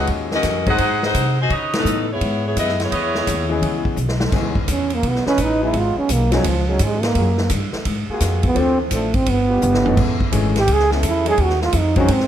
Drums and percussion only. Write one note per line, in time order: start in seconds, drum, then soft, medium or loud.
0.07 kick soft
0.07 ride medium
0.31 snare medium
0.43 kick soft
0.43 snare soft
0.43 hi-hat pedal soft
0.43 ride medium
0.66 kick medium
0.66 ride soft
0.78 kick soft
0.78 ride medium
1.03 snare medium
1.15 kick soft
1.15 hi-hat pedal medium
1.15 ride medium
1.50 kick soft
1.50 ride soft
1.73 snare medium
1.73 ride medium
1.86 hi-hat pedal medium
2.21 kick soft
2.21 ride medium
2.56 kick soft
2.56 hi-hat pedal medium
2.56 ride medium
2.69 snare soft
2.80 snare soft
2.80 ride soft
2.92 kick soft
2.92 ride medium
3.15 snare medium
3.27 kick soft
3.27 hi-hat pedal medium
3.27 ride medium
3.62 kick soft
3.62 ride medium
3.85 kick soft
3.97 hi-hat pedal medium
4.09 snare medium
4.20 snare medium
4.32 kick medium
4.32 snare soft
4.32 crash medium
4.55 kick medium
4.68 kick soft
4.68 hi-hat pedal medium
4.68 ride medium
4.90 ride soft
5.03 kick soft
5.03 ride medium
5.15 snare soft
5.27 snare medium
5.38 kick soft
5.38 hi-hat pedal medium
5.38 ride medium
5.73 kick soft
5.73 ride medium
6.09 kick soft
6.09 hi-hat pedal medium
6.09 ride medium
6.32 snare medium
6.32 ride medium
6.44 kick soft
6.44 ride medium
6.79 kick soft
6.79 hi-hat pedal medium
6.79 ride medium
7.03 snare medium
7.03 ride soft
7.15 kick soft
7.15 ride medium
7.38 snare soft
7.50 kick soft
7.50 hi-hat pedal medium
7.50 ride medium
7.73 snare soft
7.85 kick soft
7.85 ride medium
8.20 kick soft
8.20 snare soft
8.20 hi-hat pedal medium
8.20 ride medium
8.43 kick medium
8.43 ride medium
8.56 kick soft
8.56 ride medium
8.91 kick soft
8.91 hi-hat pedal medium
8.91 ride medium
9.14 kick medium
9.14 ride medium
9.26 kick soft
9.26 ride medium
9.62 hi-hat pedal medium
9.62 mid tom medium
9.74 snare medium
9.85 floor tom medium
9.97 kick medium
9.97 crash medium
10.20 kick medium
10.32 kick soft
10.32 hi-hat pedal medium
10.32 ride medium
10.56 snare soft
10.56 ride medium
10.68 kick soft
10.68 ride medium
10.79 snare soft
10.92 snare soft
11.03 kick soft
11.03 hi-hat pedal medium
11.03 ride medium
11.26 ride medium
11.38 kick soft
11.38 ride medium
11.50 snare soft
11.62 snare soft
11.73 kick soft
11.73 hi-hat pedal medium
11.73 ride medium
11.96 kick medium
11.96 ride medium
12.08 kick soft
12.08 ride medium
12.20 snare soft